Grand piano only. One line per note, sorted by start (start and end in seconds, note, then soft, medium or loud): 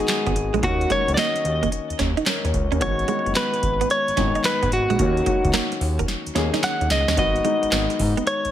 0.00 0.62 D#3 medium
0.00 0.65 G#3 medium
0.00 0.65 B3 medium
0.00 0.63 C#4 medium
0.00 0.63 F#4 medium
0.62 0.84 D#3 medium
0.62 0.84 A#3 medium
0.62 0.84 C#4 medium
0.62 0.84 F#4 medium
0.89 1.65 D#3 medium
0.89 1.65 A#3 medium
0.89 1.65 C#4 medium
0.89 1.65 F#4 medium
2.26 2.44 C#4 medium
2.26 2.44 A#4 medium
2.45 2.71 C#5 medium
2.72 2.98 C#4 medium
2.72 2.98 A#4 medium
2.80 3.02 D#3 medium
2.80 3.02 G#3 medium
2.80 3.02 B3 medium
2.80 3.02 F#4 medium
3.08 3.83 D#3 medium
3.08 3.83 G#3 medium
3.08 3.83 B3 medium
3.08 3.84 F#4 medium
4.17 4.71 D#3 medium
4.17 4.71 G#3 medium
4.17 4.71 B3 medium
4.17 4.72 D#4 medium
4.99 5.20 D#3 medium
4.99 5.20 A#3 medium
4.99 5.20 C#4 medium
4.99 5.21 F#4 medium
5.26 6.01 D#3 medium
5.26 6.01 A#3 medium
5.26 6.02 C#4 medium
5.26 6.02 F#4 medium
6.35 6.89 D#3 medium
6.35 6.89 A#3 medium
6.35 6.90 C#4 medium
6.35 6.90 G#4 loud
7.17 7.38 D#3 medium
7.17 7.38 G#3 medium
7.17 7.38 B3 medium
7.17 7.39 F#4 medium
7.44 8.19 D#3 medium
7.44 8.20 G#3 medium
7.44 8.20 B3 medium
7.44 8.20 D#4 medium